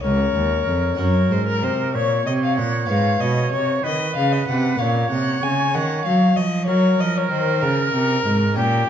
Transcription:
Already playing: C#4 F4 A#4
0.03 C#2 A#4 C#5
0.35 D#2
0.67 F2
0.95 C#4 F#4 A#4
0.99 F#2 A#4 C#5
1.31 G#2 C5
1.47 A#4
1.63 C3 C5
1.94 A#2 C#5
2.26 C3 D#5
2.43 F5
2.58 A#2 F#5
2.86 G#2 B3 F4 B4 F5
2.90 G#2
3.20 B2 D#5
3.52 C3 C#5
3.84 D#3 B4 D#5
4.16 C#3 F5
4.32 D#5
4.48 C3 F#5
4.76 A#3 C#4 C#5 F5
4.80 A#2 C#5
5.10 C3 F#5
5.43 C#3 G#5
5.74 D#3 F#5
6.05 F#3 F5
6.36 F3 D#5
6.67 F#3 A#4 C#5
6.98 F3 D#5
7.17 C#5
7.31 D#3 C5
7.62 C#3 A#4
7.94 C3
8.25 G#2
8.54 A#2 C#4 G4 C#5 G5

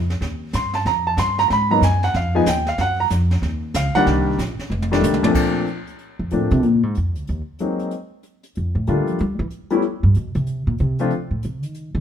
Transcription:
Already playing: F2
0.10 snare
0.21 D#2, brush sweep, snare
0.53 G2 C6, snare, hi-hat pedal
0.74 A5, snare
0.85 F2 A#5, brush sweep, snare
1.07 A5
1.17 G2 C6, snare, hi-hat pedal
1.38 A#5, snare
1.48 G#2 A#5, brush sweep, snare
1.53 B5
1.70 F#3 A#3 B3 D#4 A#5
1.81 F#2 G#5, snare, hi-hat pedal
2.03 F#5, snare
2.14 F2 F5, brush sweep, snare
2.35 F3 G#3 B3 D#4 G#5
2.46 D#2 G5, snare, hi-hat pedal
2.67 F5, snare
2.78 F#2 F#5, brush sweep, snare
3.00 A#5
3.10 F2, snare, hi-hat pedal
3.31 snare
3.42 D#2, brush sweep, snare
3.74 C#2 F5, snare, hi-hat pedal
3.95 D#3 G3 A#3 D4 F#5, muted upright bass stroke, snare
4.06 C2, brush sweep, snare
4.38 A#1, snare, hi-hat pedal
4.59 muted upright bass stroke, snare
4.70 F1, high tom
4.82 high tom
4.91 D#3 G3 A3 D4, snare
5.01 C2, hi-hat pedal, high tom
5.14 high tom
5.22 A#2 F3 A3 C4 D4, muted upright bass stroke, high tom
5.35 kick, crash
5.66 closed hi-hat
5.87 closed hi-hat
5.98 closed hi-hat
6.19 F2
6.30 A2 F3 A3 A#3 C4 D4, closed hi-hat
6.50 C3, closed hi-hat
6.63 A#2, closed hi-hat
6.83 G#2
6.95 F2, closed hi-hat
7.15 D2, closed hi-hat
7.27 D#2, closed hi-hat
7.59 F#3 G#3 A#3 C4 D#4, closed hi-hat
7.79 closed hi-hat
7.91 closed hi-hat
8.23 closed hi-hat
8.43 closed hi-hat
8.55 F2, closed hi-hat
8.75 A2
8.87 D3 G3 A3 A#3 D4 F4, closed hi-hat
9.07 F3, closed hi-hat
9.19 G3, closed hi-hat
9.39 E3
9.50 closed hi-hat
9.70 G3 A3 B3 C#4 E4, closed hi-hat
9.82 closed hi-hat
10.03 G2
10.14 B2, closed hi-hat
10.35 C3, closed hi-hat
10.46 closed hi-hat
10.67 A#2
10.78 C3, closed hi-hat
10.99 F3 A3 C4 D4 F4, closed hi-hat
11.10 closed hi-hat
11.31 A2
11.43 C3, closed hi-hat
11.63 D#3, closed hi-hat
11.74 closed hi-hat
11.95 D3

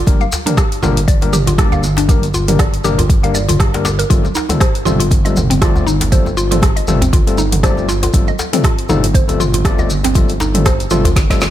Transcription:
0.07 G1 G3 A#3 D4 G4 A#4, kick, closed hi-hat, high conga, maracas
0.21 F5, maracas
0.32 djembe slap, djembe tone, maracas
0.46 G3 A#3 D4 G4 A#4, closed hi-hat, mid tom, muted conga, high conga, maracas
0.57 G4, kick, cross-stick, closed hi-hat, djembe tone, maracas
0.72 closed hi-hat, maracas
0.82 G1 G3 A#3 D4 F4 G4 A#4, mid tom, muted conga, high conga, djembe tone, maracas
0.97 closed hi-hat, maracas
1.08 D5, kick, closed hi-hat, maracas
1.21 G3 A#3 D4 G4 A#4, closed hi-hat, muted conga, high conga, djembe tone, maracas
1.33 G4, mid tom, maracas
1.47 F4, closed hi-hat, high conga, djembe tone, low conga, maracas
1.58 G3 A#3 D4 G4 D5, kick, cross-stick, closed hi-hat, muted conga, low conga, maracas
1.72 F5, djembe tone, djembe bass, maracas
1.83 low conga, maracas
1.97 D4, closed hi-hat, djembe slap, muted conga, maracas
2.09 G3 A#3 D4 G4 A#4, kick, closed hi-hat, high conga, djembe tone, low conga, maracas
2.23 closed hi-hat, maracas
2.34 F4, djembe tone, maracas
2.48 G3 A#3 D4 G4 A#4, closed hi-hat, mid tom, muted conga, high conga, maracas
2.59 D5, kick, cross-stick, closed hi-hat, djembe tone, maracas
2.73 closed hi-hat, maracas
2.84 G1 G3 A#3 D4 G4 A#4, mid tom, maracas
2.99 F4, closed hi-hat, djembe tone, djembe bass, maracas
3.09 kick, closed hi-hat, low conga, maracas
3.23 G3 A#3 D4 G4 A#4 F5, closed hi-hat, muted conga, djembe tone, maracas
3.34 D5, low conga, maracas
3.49 F4, closed hi-hat, mid tom, djembe tone, high conga, maracas
3.60 G4, kick, cross-stick, closed hi-hat, muted conga, high conga, maracas
3.74 G3 A#3 D4 G4 A#4, closed hi-hat, djembe slap, maracas
3.85 G4, djembe slap, djembe tone, maracas
3.99 A#4, closed hi-hat, muted conga, maracas
4.10 G1 G3 A3 C4 F4 A4, kick, closed hi-hat, high conga, maracas
4.25 djembe tone, maracas
4.35 D#4, djembe slap, maracas
4.49 G3 A3 C4 F4 A4, closed hi-hat, mid tom, muted conga, high conga, djembe tone, maracas
4.60 C5, kick, cross-stick, closed hi-hat, maracas
4.75 closed hi-hat, maracas
4.85 G1 G3 A3 C4 F4 A4, mid tom, muted conga, djembe tone, high conga, maracas
5.00 F4, closed hi-hat, maracas
5.11 kick, closed hi-hat, djembe tone, maracas
5.25 G3 A3 C4 F4 A4 D#5, closed hi-hat, muted conga, high conga, maracas
5.36 mid tom, djembe tone, maracas
5.50 C4, closed hi-hat, high conga, low conga, maracas
5.61 G3 A3 C4 F4 D5, kick, cross-stick, closed hi-hat, muted conga, low conga, maracas
5.76 djembe tone, djembe bass, maracas
5.87 D#4, low conga, maracas
6.01 closed hi-hat, djembe slap, muted conga, djembe tone, maracas
6.12 G3 A3 C4 F4 A4 C5, kick, closed hi-hat, high conga, low conga, maracas
6.26 djembe tone, maracas
6.37 F4, maracas
6.51 G3 A3 C4 F4 A4, closed hi-hat, mid tom, muted conga, high conga, maracas
6.62 kick, cross-stick, closed hi-hat, djembe tone, maracas
6.76 D#5, closed hi-hat, maracas
6.88 G1 G3 A3 C4 F4 A4, mid tom, djembe tone, maracas
7.02 C4, closed hi-hat, djembe bass, maracas
7.13 F4, kick, closed hi-hat, djembe tone, low conga, maracas
7.27 G3 A3 C4 F4 A4, closed hi-hat, muted conga, maracas
7.37 D#4, low conga, maracas
7.52 closed hi-hat, mid tom, high conga, djembe tone, maracas
7.63 G3 A3 C4 F4 C5 D5, kick, cross-stick, closed hi-hat, muted conga, high conga, maracas
7.77 djembe tone, maracas
7.89 F4, djembe slap, maracas
8.03 F4, closed hi-hat, muted conga, djembe tone, maracas
8.13 G1 G3 A3 C4 F4 A4, kick, closed hi-hat, high conga, maracas
8.28 D#5, maracas
8.39 djembe slap, djembe tone, maracas
8.53 G3 A3 C4 F4 A4, closed hi-hat, mid tom, muted conga, high conga, maracas
8.64 F4, kick, cross-stick, closed hi-hat, djembe tone, maracas
8.78 closed hi-hat, maracas
8.89 G1 G3 A3 C4 D#4 F4 A4, mid tom, djembe tone, high conga, maracas
9.04 closed hi-hat, maracas
9.15 C5, kick, closed hi-hat, maracas
9.29 G3 A3 C4 F4 A4, closed hi-hat, muted conga, djembe tone, high conga, maracas
9.40 F4, mid tom, maracas
9.53 F4, closed hi-hat, djembe tone, high conga, low conga, maracas
9.65 G3 A3 C4 F4 D5, kick, cross-stick, closed hi-hat, muted conga, low conga, maracas
9.79 D#5, djembe tone, djembe bass, maracas
9.90 low conga, maracas
10.04 C4, closed hi-hat, djembe slap, muted conga, maracas
10.15 G3 A3 C4 F4 A4, kick, closed hi-hat, djembe tone, high conga, low conga, maracas
10.29 closed hi-hat, maracas
10.40 D#4, djembe slap, djembe tone, maracas
10.54 G3 A3 C4 F4 A4, closed hi-hat, mid tom, muted conga, high conga, maracas
10.66 C5, kick, cross-stick, closed hi-hat, djembe tone, maracas
10.80 closed hi-hat, maracas
10.90 G1 G3 A3 C4 F4 A4, mid tom, muted conga, high conga, maracas
11.05 F4, closed hi-hat, djembe tone, djembe bass, maracas
11.16 kick, snare, closed hi-hat, low conga, maracas
11.30 G3 A3 C4 F4 A4 D#5, kick, snare, closed hi-hat, muted conga, djembe tone, maracas
11.41 snare, low conga, maracas

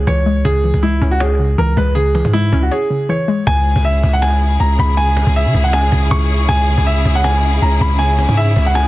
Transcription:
Already playing: C#3 G#3 C#4 C#5
0.07 C#2 E3 C#5, cajon bass
0.26 G#3, cajon slap
0.31 cajon slap
0.36 cajon slap
0.41 cajon slap
0.45 C#2 C#3 G#4, cajon bass
0.55 cajon slap
0.64 E3, cajon slap
0.74 C#2, cajon bass
0.83 G#3 E4, cajon slap
1.02 C#2 C#4, cajon bass
1.11 F#4, cajon slap
1.20 G#4 C#5, cajon slap
1.30 cajon slap
1.39 C#3, cajon slap
1.49 cajon slap
1.58 C#2 E3 A#4, cajon slap
1.77 C#2 G#3 B4, cajon bass
1.82 cajon slap
1.87 cajon slap
1.91 G#4, cajon slap
1.96 C#3, cajon slap
2.06 cajon slap
2.15 E3, cajon slap
2.25 G#2, cajon bass
2.33 G#3 E4, cajon slap
2.53 C#2 C#4, cajon bass
2.62 F#4, cajon slap
2.71 G#4 C#5
2.90 C#3
3.09 E3 C#5
3.28 G#3
3.47 C#2 C#3 C#4 E4 G#4 G#5, cajon bass
3.57 cajon slap
3.66 cajon slap
3.76 C#2, cajon bass
3.85 E5, cajon slap
4.03 C#2, cajon bass
4.13 F#5, cajon slap
4.22 G#5, cajon slap
4.32 cajon slap
4.41 cajon slap
4.51 cajon slap
4.60 C#2 A#5, cajon slap
4.79 C#2 B5, cajon bass
4.84 cajon slap
4.89 cajon slap
4.93 G#5, cajon slap
4.98 cajon slap
5.08 cajon slap
5.17 cajon slap
5.27 C#2, cajon bass
5.35 E5, cajon slap
5.46 C#3
5.54 C#2, cajon bass
5.64 F#5, cajon slap
5.73 G#5, cajon slap
5.83 cajon slap
5.92 C#2, cajon bass
6.02 cajon slap
6.11 C#2 C#6, cajon bass
6.30 cajon slap
6.35 cajon slap
6.40 cajon slap
6.44 cajon slap
6.49 C#2 G#5, cajon bass
6.59 cajon slap
6.68 cajon slap
6.78 C#2, cajon bass
6.86 E5, cajon slap
7.05 C#2, cajon bass
7.15 F#5, cajon slap
7.24 G#5, cajon slap
7.34 cajon slap
7.43 cajon slap
7.53 cajon slap
7.62 C#2 A#5, cajon slap
7.81 C#2 B5, cajon bass
7.86 cajon slap
7.91 cajon slap
7.95 G#5, cajon slap
8.00 cajon slap
8.10 cajon slap
8.19 cajon slap
8.29 G#2, cajon bass
8.37 E5, cajon slap
8.56 C#2, cajon bass
8.66 F#5, cajon slap
8.75 G#5, cajon slap

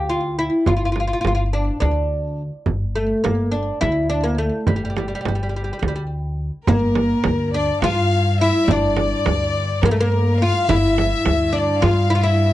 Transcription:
Already playing: D2
0.09 F4
0.39 E4
0.66 G1 F4, frame drum
0.77 F4
0.85 F4
0.92 F4, frame drum
1.00 F4
1.07 F4
1.13 F4
1.21 G1 F4, frame drum
1.27 F4
1.35 F4
1.53 D4
1.80 D2 D4, frame drum
2.66 G1, frame drum
2.95 A3
3.24 G1 A#3, frame drum
3.52 D4
3.81 D2 E4, frame drum
4.10 D4
4.24 A#3
4.38 A3
4.67 G1 G3, frame drum
4.76 G3
4.85 G3
4.90 G3
4.97 G3, frame drum
5.08 G3
5.15 G3
5.21 G3
5.25 G1 G3, frame drum
5.35 G3
5.43 G3
5.49 G3
5.56 G3
5.64 G3
5.73 G3
5.79 D2 G3, frame drum
5.88 G3
5.96 G3
6.67 G1 G2 A#3 A#4, frame drum
6.95 frame drum
7.24 D2, frame drum
7.54 D4 D5
7.82 G2 F4 F5, frame drum
8.40 E4 E5
8.68 G1 D4 D5, frame drum
8.97 frame drum
9.26 D2, frame drum
9.82 G2 A#3 A#4, frame drum
9.91 A3
9.97 A#3 A#4
10.39 F4 F5
10.67 G1 G2 E4 E5, frame drum
10.98 frame drum
11.26 D2, frame drum
11.53 D4 D5
11.82 G2 F4 F5, frame drum
12.10 E4
12.15 F4
12.23 E4 E5

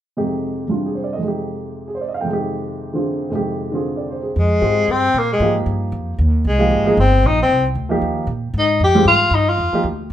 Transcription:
0.17 F2 C3 G#3 D#4 G4
0.68 C3 G3 D4 F4
0.86 G#4
0.95 C5
1.04 D5
1.13 F2 D#5
1.20 C3 G#3
1.25 D#4 G4
1.88 G#4
1.95 C5
2.01 D5
2.08 D#5
2.14 F5
2.21 F2 G5
2.25 C3 G#3
2.31 D#3 G4
2.93 D3 C4 F4 G#4
3.30 F2 C3 D#3 G#3
3.35 G4
3.72 D3 C4 F4 G#4
3.97 D5
4.10 C5
4.23 G#4
4.36 F2 G#3
4.62 G#2 C4 F4 G4 G#4
4.88 G2 C4
5.14 A#2
5.18 A#3
5.33 G#3
5.40 G#2 F3 A#3 D#4 G4
5.66 G2
5.92 F2
6.19 D#2
6.45 C2 G#3
6.59 F3 A#3 D#4 G4
6.71 G#1
6.85 F3 A#3 D#4 G#4
6.97 G1 C4
7.23 A#1 D#4
7.42 C4
7.49 C2
7.75 D2
7.89 F3 A#3 D#4 G4
8.01 D#2
8.27 A#2
8.54 G#2
8.58 D#4
8.80 F2 G4
8.95 G3 C4 F4 G#4
9.05 G#2 F4
9.31 G2 D#4
9.49 F4
9.58 F2
9.73 F3 A#3 D#4 G4, muted upright bass stroke
9.83 D2

